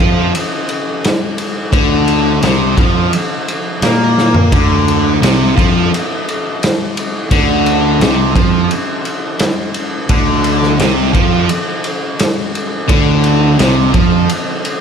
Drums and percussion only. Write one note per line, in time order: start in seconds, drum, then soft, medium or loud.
0.00 ride medium
0.35 ride medium
0.69 ride medium
1.04 snare loud
1.04 ride medium
1.38 ride medium
1.73 kick loud
1.73 ride medium
2.08 ride medium
2.42 snare medium
2.42 ride medium
2.78 kick loud
2.78 ride medium
3.13 ride medium
3.48 ride medium
3.82 snare medium
3.82 ride medium
4.18 snare medium
4.34 floor tom medium
4.52 kick loud
4.52 ride medium
4.88 ride medium
5.23 snare loud
5.23 ride medium
5.58 kick loud
5.58 ride medium
5.94 ride medium
6.29 ride medium
6.63 snare loud
6.63 ride medium
6.97 ride medium
7.31 kick medium
7.31 ride medium
7.66 ride medium
8.01 snare medium
8.01 ride medium
8.36 kick medium
8.36 ride medium
8.71 ride medium
9.05 ride medium
9.39 snare loud
9.39 ride medium
9.74 ride medium
10.09 kick loud
10.09 ride medium
10.44 ride medium
10.63 snare soft
10.79 snare medium
10.79 ride medium
11.15 kick medium
11.15 ride medium
11.49 ride medium
11.84 ride medium
12.19 snare loud
12.19 ride medium
12.55 ride medium
12.89 kick loud
12.89 ride medium
13.24 ride medium
13.59 snare loud
13.59 ride medium
13.94 kick loud
13.94 ride medium
14.29 ride medium
14.65 ride medium